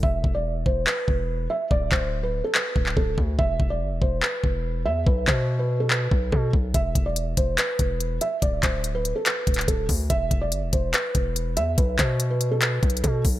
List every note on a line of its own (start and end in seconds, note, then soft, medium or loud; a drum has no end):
0.03 0.23 E1 loud
0.03 0.33 E5 medium
0.03 kick loud
0.24 0.64 E1 loud
0.24 kick medium
0.35 0.64 D5 medium
0.66 0.86 E1 loud
0.66 0.84 C5 medium
0.66 kick medium
0.87 1.46 B4 medium
0.87 clap loud
1.08 1.48 E1 loud
1.08 kick loud
1.50 1.68 E5 medium
1.71 1.91 D1 loud
1.71 1.89 D5 medium
1.71 kick loud
1.92 2.42 D1 loud
1.92 2.21 C5 medium
1.92 kick loud
1.92 clap loud
2.23 2.41 B4 medium
2.44 2.53 A4 medium
2.55 2.94 B4 medium
2.55 clap loud
2.76 2.96 D1 loud
2.76 kick medium
2.86 clap medium
2.97 3.17 D1 loud
2.97 3.14 A4 medium
2.97 kick loud
3.18 3.38 D2 loud
3.18 kick medium
3.39 3.59 E1 loud
3.39 3.68 E5 loud
3.39 kick loud
3.60 3.82 E1 loud
3.60 kick medium
3.70 4.00 D5 medium
3.81 3.93 G1 loud
3.91 4.01 E1 loud
4.02 4.22 E1 loud
4.02 4.19 C5 medium
4.02 kick medium
4.23 4.82 B4 medium
4.23 clap loud
4.44 4.87 E1 loud
4.44 kick medium
4.86 5.06 E2 loud
4.86 5.03 E5 loud
5.06 5.27 B1 loud
5.06 5.24 B4 medium
5.06 kick loud
5.27 6.08 B2 loud
5.27 5.57 C5 medium
5.27 kick medium
5.27 clap loud
5.59 5.77 B4 medium
5.80 5.89 A4 medium
5.90 6.30 B4 medium
5.90 clap loud
6.11 6.32 B1 loud
6.11 kick loud
6.32 6.53 B2 loud
6.32 6.50 A4 medium
6.32 kick loud
6.53 6.74 B1 loud
6.53 kick medium
6.74 6.95 E1 loud
6.74 7.04 E5 loud
6.74 kick loud
6.74 closed hi-hat medium
6.95 7.36 E1 loud
6.95 kick medium
6.95 closed hi-hat medium
7.06 7.35 D5 medium
7.16 closed hi-hat medium
7.37 7.57 E1 loud
7.37 7.55 C5 medium
7.37 kick medium
7.37 closed hi-hat medium
7.58 8.17 B4 medium
7.58 clap loud
7.58 closed hi-hat medium
7.79 8.20 E1 loud
7.79 kick medium
7.79 closed hi-hat medium
8.00 closed hi-hat medium
8.21 8.39 E5 medium
8.21 closed hi-hat medium
8.42 8.62 D1 loud
8.42 8.60 D5 medium
8.42 kick loud
8.42 closed hi-hat medium
8.63 9.14 D1 loud
8.63 8.93 C5 medium
8.63 kick medium
8.63 clap medium
8.63 closed hi-hat medium
8.84 closed hi-hat medium
8.95 9.12 B4 medium
9.05 closed hi-hat medium
9.16 9.24 A4 medium
9.26 9.66 B4 medium
9.26 clap loud
9.26 closed hi-hat medium
9.47 9.67 D1 loud
9.47 kick loud
9.47 closed hi-hat medium
9.54 clap medium
9.54 closed hi-hat medium
9.61 closed hi-hat medium
9.68 9.88 D1 loud
9.68 9.86 A4 medium
9.68 kick loud
9.68 closed hi-hat medium
9.89 10.09 D2 loud
9.89 kick medium
9.89 open hi-hat medium
10.10 10.30 E1 loud
10.10 10.40 E5 loud
10.10 kick loud
10.10 closed hi-hat medium
10.31 10.54 E1 loud
10.31 kick loud
10.31 closed hi-hat medium
10.41 10.71 D5 medium
10.52 10.64 G1 loud
10.52 closed hi-hat medium
10.62 10.72 E1 loud
10.73 10.93 E1 loud
10.73 10.90 C5 medium
10.73 kick medium
10.73 closed hi-hat medium
10.94 11.53 B4 medium
10.94 clap loud
10.94 closed hi-hat medium
11.15 11.58 E1 loud
11.15 kick loud
11.15 closed hi-hat medium
11.36 closed hi-hat medium
11.57 11.77 E2 loud
11.57 11.74 E5 medium
11.57 closed hi-hat medium
11.78 11.98 B1 loud
11.78 11.95 B4 medium
11.78 kick loud
11.78 closed hi-hat medium
11.99 12.79 B2 loud
11.99 12.28 C5 medium
11.99 kick loud
11.99 clap loud
11.99 closed hi-hat medium
12.20 closed hi-hat medium
12.30 12.48 B4 medium
12.41 closed hi-hat medium
12.51 12.60 A4 medium
12.62 13.01 B4 medium
12.62 clap loud
12.62 closed hi-hat medium
12.83 13.03 B1 loud
12.83 kick loud
12.83 closed hi-hat soft
12.90 closed hi-hat medium
12.97 closed hi-hat medium
13.04 13.24 B2 loud
13.04 13.21 A4 medium
13.04 kick loud
13.04 closed hi-hat medium
13.25 13.39 B1 loud
13.25 kick medium
13.25 open hi-hat medium